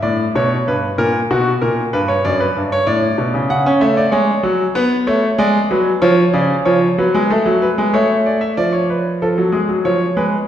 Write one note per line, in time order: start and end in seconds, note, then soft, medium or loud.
0.02 0.23 A2 medium
0.02 0.23 D5 medium
0.35 0.55 B2 medium
0.35 0.55 C#5 medium
0.67 0.87 G2 medium
0.67 0.87 B4 medium
0.98 1.18 A#2 medium
0.98 1.18 A#4 loud
1.31 1.50 B2 medium
1.31 1.50 F#4 medium
1.61 1.81 A#2 medium
1.61 1.81 A#4 medium
1.93 2.13 G2 medium
1.93 2.08 B4 medium
2.08 2.24 C#5 medium
2.25 2.44 F#2 medium
2.25 2.40 D5 medium
2.40 2.60 B4 medium
2.57 2.76 G2 medium
2.72 2.87 C#5 medium
2.87 3.06 A2 medium
2.87 3.48 D5 medium
3.18 3.33 B2 medium
3.34 3.49 C#3 medium
3.50 3.65 C#3 medium
3.50 3.70 F#5 medium
3.66 3.81 C#4 medium
3.81 4.01 A3 medium
3.81 3.97 E5 medium
3.97 4.12 D5 medium
4.11 4.32 G#3 medium
4.11 4.73 C#5 medium
4.43 4.63 F#3 medium
4.75 4.95 B3 loud
4.75 4.95 B4 medium
5.07 5.27 A3 loud
5.07 5.27 C#5 medium
5.38 5.58 G#3 loud
5.38 5.58 D5 medium
5.71 5.90 F#3 medium
5.71 5.90 B4 medium
6.02 6.22 F3 loud
6.02 6.21 C#5 medium
6.34 6.53 C#3 medium
6.34 6.53 D5 medium
6.65 6.86 F3 medium
6.65 6.85 C#5 medium
6.98 7.13 F#3 medium
6.98 7.18 B4 medium
7.14 7.30 G#3 medium
7.30 7.45 A3 medium
7.30 7.50 A4 medium
7.46 7.65 F#3 medium
7.62 7.81 B4 medium
7.78 7.93 G#3 medium
7.94 8.56 A3 medium
7.94 8.14 C#5 medium
8.26 8.41 D5 medium
8.41 8.57 E5 medium
8.57 9.20 F3 medium
8.57 8.73 D5 medium
8.73 8.89 C#5 medium
8.90 9.10 B4 medium
9.22 9.37 F3 medium
9.22 9.42 A4 medium
9.38 9.53 F#3 medium
9.52 9.68 G#3 medium
9.52 9.72 G#4 medium
9.69 9.84 F#3 medium
9.85 10.04 F3 medium
9.85 10.05 C#5 medium
10.17 10.36 G#3 medium
10.17 10.36 B4 medium